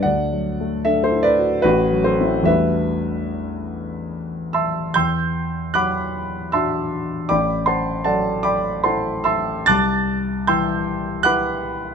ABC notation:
X:1
M:3/4
L:1/16
Q:1/4=75
K:Em
V:1 name="Grand piano"
[df]4 [Ae] [Ac] [Bd]2 [FB]2 [Ac]2 | [Be]8- [Be]2 [eac'e']2 | [gc'e'g']4 [fbd'f']4 [eac'e']4 | [dgbd']2 [cfac']2 [Adfa]2 [dgbd']2 [cfac']2 [eac'e']2 |
[ad'f'a']4 [gc'e'g']4 [fbd'f']4 |]
V:2 name="Grand piano"
(3D,,2 F,2 A,2 (3D2 E2 F2 (3A,,,2 F,2 [CE]2 | [E,,G,A,DF]12 | E,,4 F,4 [DF]4 | A,,,4 F,4 [EA]4 |
C,,4 E,4 [EB]4 |]